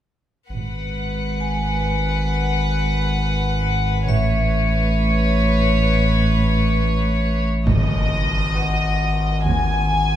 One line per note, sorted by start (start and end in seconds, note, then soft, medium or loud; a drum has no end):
0.49 4.09 G#1 medium
0.49 1.36 G#1 soft
0.49 4.05 G#2 soft
0.49 4.04 B4 soft
0.49 4.05 F#5 soft
1.40 4.05 G#5 soft
4.08 7.66 A1 medium
4.08 4.94 A1 soft
4.08 7.47 A2 soft
4.08 7.43 B4 soft
4.08 7.43 C#5 soft
4.08 6.73 E5 soft
7.66 10.16 G#1 medium
7.66 8.39 G#1 soft
7.66 8.39 G#2 soft
7.66 9.42 D#5 soft
7.66 impact soft
8.56 9.24 F#4 soft
8.56 9.24 B4 soft
8.56 10.16 F#5 soft
9.45 10.16 D#2 soft
9.45 10.16 G#5 soft